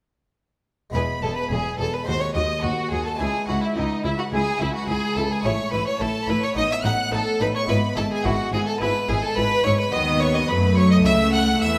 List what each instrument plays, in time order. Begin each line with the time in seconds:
0.90 harpsichord G#3 B3 E4
0.94 double bass section E1, harpsichord E2, cello section E2, viola section G#4, violin B4, violin section B4 B5
1.22 double bass section E1, harpsichord E2, cello section E2, viola section G#4, violin section A4 A5, violin A4
1.36 violin B4, violin section B4 B5
1.51 double bass section E1, harpsichord E2, cello section E2, violin section G#4 G#5, violin G#4, viola section G#4
1.78 double bass section E1, harpsichord E2, cello section E2, viola section G#4, violin section A4 A5, violin A4
1.93 violin section B4 B5, violin B4
2.03 harpsichord G#3 C4 F#4, violin section C5, violin C5
2.08 harpsichord D#2, double bass section D#2, cello section D#2, viola section F#4, violin section C6
2.20 violin section C#5 C#6, violin C#5
2.34 double bass section D#2, harpsichord D#2, cello section D#2, viola section F#4, violin section D#5 D#6, violin D#5
2.62 double bass section D#2, cello section D#2, harpsichord D#2, violin section F#4 F#5, violin F#4, viola section F#4
2.91 double bass section D#2, harpsichord D#2, cello section D#2, viola section F#4, violin section G#4 G#5, violin G#4
3.05 violin section A4 A5, violin A4
3.15 harpsichord G#3 C#4 E4
3.19 harpsichord C#2, double bass section C#2, cello section C#2, viola section E4, violin section G#4 G#5, violin G#4
3.48 double bass section C#2, harpsichord C#2, cello section C#2, viola section E4, violin section F#4 F#5, violin F#4
3.62 violin E4, violin section E4 E5
3.76 harpsichord C#2, double bass section C#2, cello section C#2, violin section D#4 D#5, violin D#4, viola section E4
4.04 harpsichord C#2, double bass section C#2, cello section C#2, violin section E4 E5, violin E4, viola section E4
4.18 violin section F#4 F#5, violin F#4
4.32 harpsichord C#2, double bass section C#2, cello section C#2, viola section E4, violin section G#4 G#5, violin G#4
4.60 harpsichord C#2, double bass section C#2, cello section C#2, violin section E4 E5, viola section E4, violin E4
4.73 violin section F#4 F#5, violin F#4
4.88 double bass section C#2, cello section C#2, harpsichord C#2, viola section E4, violin section G#4 G#5, violin G#4
5.15 harpsichord C#2, double bass section C#2, cello section C#2, viola section E4, violin section A4 A5, violin A4
5.30 violin section G#4 G#5, violin G#4
5.41 double bass section A1, harpsichord A2 C#4 E4, cello section A2, violin section C#5
5.45 viola section E4, violin C#5, violin section C#6
5.72 double bass section A1, harpsichord A2, cello section A2, viola section E4, violin section B4 B5, violin B4
5.86 violin section C#5 C#6, violin C#5
5.99 double bass section A1, harpsichord A2, cello section A2, viola section E4, violin section A4 A5, violin A4
6.27 double bass section A1, harpsichord A2, cello section A2, viola section E4, violin section B4 B5, violin B4
6.41 violin section C#5 C#6, violin C#5
6.53 double bass section A1, cello section A2, harpsichord A2 B3 D#4, viola section D#4, violin section D#5 D#6
6.57 violin D#5
6.70 violin section E5 E6, violin E5
6.84 double bass section A1, harpsichord A2, cello section A2, viola section D#4, violin section F#5 F#6, violin F#5
7.12 double bass section A1, harpsichord A2, cello section A2, viola section D#4, violin section A4 A5, violin A4
7.40 double bass section A1, harpsichord A2, cello section A2, viola section D#4, violin section B4 B5, violin B4
7.54 violin section C#5 C#6, violin C#5
7.63 harpsichord G#3 B3 E4
7.68 double bass section G#1, harpsichord G#2, cello section G#2, viola section E4, violin section B4 B5, violin B4
7.97 double bass section G#1, harpsichord G#2, cello section G#2, viola section E4, violin A4, violin section A4 A5
8.11 violin section G#4 G#5, violin G#4
8.25 double bass section G#1, harpsichord G#2, cello section G#2, viola section E4, violin F#4, violin section F#4 F#5
8.53 double bass section G#1, harpsichord G#2, cello section G#2, viola section E4, violin G#4, violin section G#4 G#5
8.67 violin A4, violin section A4 A5
8.80 double bass section G#1, harpsichord G#2, cello section G#2, viola section E4, violin B4, violin section B4 B5
9.09 double bass section G#1, cello section G#2, harpsichord G#2, viola section E4, violin G#4, violin section G#4 G#5
9.22 violin A4, violin section A4 A5
9.36 double bass section G#1, cello section G#2, harpsichord G#2, viola section E4, violin B4, violin section B4 B5
9.64 double bass section G#1, cello section G#2, harpsichord G#2, viola section E4, violin C#5, violin section C#5 C#6
9.78 violin B4, violin section B4 B5
9.91 double bass section D#2, cello section D#3, harpsichord D#3 B3 F#4, viola section B3, violin D#5, violin section D#5 D#6
10.20 violin C#5, violin section C#5 C#6
10.34 violin D#5, violin section D#5 D#6
10.48 double bass section F#2, cello section F#3, harpsichord F#3, viola section A3, violin B4, violin section B4 B5
10.77 violin C#5, violin section C#5 C#6
10.91 violin D#5, violin section D#5 D#6
11.02 double bass section C#2, cello section C#3, harpsichord A3 C#4 E4, violin section E5 E6, violin E5
11.06 harpsichord C#3
11.33 violin F#5, violin section F#5 F#6
11.61 double bass section E2, cello section E3, harpsichord E3, violin section E5 E6, violin E5